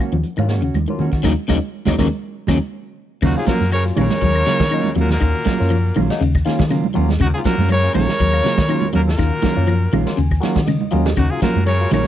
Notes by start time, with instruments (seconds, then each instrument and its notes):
0.00 clean electric guitar A#3 C#4 F#4, claves
0.12 fingered electric bass D#2, clean electric guitar F3, closed hi-hat, low conga
0.23 closed hi-hat, high conga
0.37 fingered electric bass G#2, clean electric guitar D#3, tine electric piano F#3 A#3 C#4 F4, high conga, claves
0.48 clean electric guitar A#3 C#4 F#4, snare, closed hi-hat
0.62 fingered electric bass D#2, clean electric guitar C#3 C#4 F#4, closed hi-hat
0.74 fingered electric bass D#2, closed hi-hat, high conga, claves
0.88 clean electric guitar D#3, tine electric piano F#3 A#3 C#4 F4, high conga
0.99 fingered electric bass D#3, clean electric guitar A#3 C#4 F#4, closed hi-hat, low conga
1.13 fingered electric bass D#3, clean electric guitar C#4 F#4, muted clean electric guitar stroke, kick, snare
1.23 fingered electric bass D#2, clean electric guitar C#3 D#3 F#3 A#3 C#4 D#4, tine electric piano A#3 C#4 D#4, kick, snare, high conga, claves
1.48 fingered electric bass D#2, clean electric guitar C#3 D#3 F#3 A#3 C#4 D#4, tine electric piano A#3 C#4 D#4, kick, snare, high conga, claves
1.86 fingered electric bass D#2, clean electric guitar C#3 D#3 F#3 A#3 C#4 D#4, tine electric piano A#3 C#4 D#4, kick, snare, high conga, claves
1.98 fingered electric bass D#2, clean electric guitar C#3 D#3 F#3 A#3 C#4 D#4, tine electric piano A#3 C#4 D#4, kick, snare, high conga, claves
2.47 fingered electric bass D#2, clean electric guitar C#3 D#3 F#3 A#3 C#4 D#4, tine electric piano A#3 C#4 D#4, kick, snare, high conga, claves
3.22 fingered electric bass D#2, baritone saxophone F#2, clean electric guitar C#3 F#3 A#3 C#4 F4, alto saxophone D#4, trumpet F#4, kick, crash, claves
3.36 baritone saxophone G#2, tine electric piano F#3 A#3 C#4 F4, alto saxophone F4, trumpet G#4
3.47 baritone saxophone A#2, clean electric guitar F3 F#3 A#3 C#4 F4, alto saxophone F#4, trumpet A#4, muted fingered electric bass stroke, kick, snare, ride bell, high conga
3.61 fingered electric bass F#2, snare
3.72 baritone saxophone C#3, clean electric guitar F#3, alto saxophone A#4, trumpet C#5, ride bell, claves
3.85 tine electric piano F#3 A#3 C#4 F4, snare
3.96 fingered electric bass A#1, baritone saxophone C#3, clean electric guitar D#3 F#3 A#3 C#4 F4, alto saxophone A#4, trumpet C#5, ride bell, high conga, low conga, claves
4.10 snare, high conga
4.21 fingered electric bass D#2, clean electric guitar F#3, kick, ride bell
4.35 tine electric piano F#3 A#3 C#4 F4, claves
4.46 clean electric guitar C#3 F#3 A#3 C#4 F4, snare, ride bell
4.60 fingered electric bass D#3, kick, snare, ride bell, high conga
4.71 clean electric guitar D#3 F#3 A#3 C#4 F4, tine electric piano F#3 A#3 C#4 D#4, ride bell, claves
4.84 high conga
4.96 fingered electric bass D#2, clean electric guitar F#3 A#3 C#4 F4, ride bell, low conga
5.00 baritone saxophone A#2, alto saxophone F#4, trumpet A#4
5.10 baritone saxophone A#2, alto saxophone F#4, trumpet A#4, snare
5.20 fingered electric bass D#2, clean electric guitar D#3, tine electric piano F#3 A#3 C#4 F4, kick, ride bell, claves
5.45 clean electric guitar F#3 A#3 C#4 F4, muted clean electric guitar stroke, muted fingered electric bass stroke, kick, snare, ride bell, high conga
5.58 fingered electric bass F#2, tine electric piano F#3 A#3 C#4 F4, clean electric guitar A#3 C#4 F4, snare
5.70 clean electric guitar F3, ride bell, claves
5.96 fingered electric bass A#1, clean electric guitar D#3 F#3 A#3 C#4 F4, open hi-hat, high conga, low conga, claves
6.10 tine electric piano F#3 A#3 C#4 D#4, snare, ride bell
6.21 fingered electric bass D#2, clean electric guitar C#3, ride bell
6.35 kick, claves
6.45 clean electric guitar D#3 A#3 C#4 F4, tine electric piano F#3 A#3 C#4 F4, snare, ride bell
6.59 fingered electric bass D#3, kick, snare, high conga
6.69 clean electric guitar C#3 F#3 A#3 C#4 F4, snare, ride bell, claves
6.84 high conga
6.94 fingered electric bass D#2, clean electric guitar F#3 A#3 C#4 F4, tine electric piano F#3 A#3 C#4 F4, ride bell, low conga
7.09 snare, high conga
7.20 fingered electric bass D#2, clean electric guitar C#3, alto saxophone D#4, trumpet F#4, kick, ride bell, claves
7.26 baritone saxophone F#2
7.34 baritone saxophone G#2, tine electric piano F#3 A#3 C#4 F4, alto saxophone F4, trumpet G#4
7.45 baritone saxophone A#2, clean electric guitar F3 F#3 A#3 C#4 F4, alto saxophone F#4, trumpet A#4, muted fingered electric bass stroke, kick, snare, ride bell, high conga
7.58 fingered electric bass F#2, clean electric guitar A#3 C#4 F4, snare, high conga
7.69 baritone saxophone C#3, clean electric guitar F#3, alto saxophone A#4, trumpet C#5, ride bell, claves
7.83 tine electric piano F#3 A#3 C#4 F4, snare
7.94 fingered electric bass A#1, baritone saxophone C#3, clean electric guitar D#3 F#3 A#3 C#4 F4, trumpet C#5, ride bell, high conga, low conga, claves
7.99 alto saxophone A#4
8.09 snare
8.20 fingered electric bass D#2, clean electric guitar F#3, kick, ride bell
8.33 tine electric piano F#3 A#3 C#4 F4, claves
8.44 clean electric guitar C#3 F#3 A#3 C#4 F4, snare, ride bell
8.58 fingered electric bass D#3, kick, snare, ride bell, high conga
8.68 clean electric guitar D#3 F#3 A#3 C#4 F4, tine electric piano F#3 A#3 C#4 F4, ride bell, claves
8.82 high conga
8.93 fingered electric bass D#2, baritone saxophone A#2, clean electric guitar F#3 A#3 C#4 F4, alto saxophone F#4, trumpet A#4, ride bell, low conga
9.08 baritone saxophone A#2, alto saxophone F#4, trumpet A#4, snare
9.17 fingered electric bass D#2, clean electric guitar D#3, tine electric piano F#3 A#3 C#4 F4, kick, snare, ride bell, claves
9.42 clean electric guitar D#3 F#3 A#3 C#4 F4, muted fingered electric bass stroke, kick, snare, ride bell, high conga
9.56 fingered electric bass F#2, tine electric piano F#3 A#3 C#4 F4, clean electric guitar A#3 C#4 F4
9.67 clean electric guitar F3, ride bell, claves
9.93 fingered electric bass A#1, clean electric guitar D#3 A#3 C#4 F4, tine electric piano F#5, muted clean electric guitar stroke, open hi-hat, high conga, low conga, claves
10.05 tine electric piano F#3 A#3 C#4 F4, snare, ride bell
10.17 fingered electric bass D#2, clean electric guitar C#3, tine electric piano G#5, ride bell
10.31 kick, claves
10.40 clean electric guitar D#3 F#3 A#3 C#4 F4, tine electric piano F#3 A#3 C#4 F#4 F#5, snare, ride bell
10.56 fingered electric bass D#3, kick, snare, high conga
10.66 clean electric guitar C#3, tine electric piano D#5, snare, ride bell, high conga, claves
10.81 high conga
10.91 fingered electric bass D#2, tine electric piano F#3 A#3 C#4 F4 D#5, clean electric guitar F#3 A#3 C#4, muted clean electric guitar stroke, ride bell, low conga
11.06 snare, low conga
11.17 fingered electric bass D#2, baritone saxophone F#2, clean electric guitar C#3, alto saxophone D#4, trumpet F#4, kick, ride bell, claves
11.31 baritone saxophone G#2, tine electric piano F#3 A#3 C#4 F4, alto saxophone F4, trumpet G#4
11.42 baritone saxophone A#2, clean electric guitar F3 F#3 A#3 C#4 F4, alto saxophone F#4, trumpet A#4, muted fingered electric bass stroke, kick, snare, ride bell, high conga
11.56 fingered electric bass F#2, high conga
11.66 baritone saxophone C#3, clean electric guitar F#3, alto saxophone A#4, trumpet C#5, ride bell, claves
11.80 tine electric piano F#3 A#3 C#4 F4
11.91 fingered electric bass A#1, baritone saxophone C#3, clean electric guitar D#3 F#3 A#3 C#4 F4, alto saxophone A#4, trumpet C#5, snare, ride bell, high conga, low conga, claves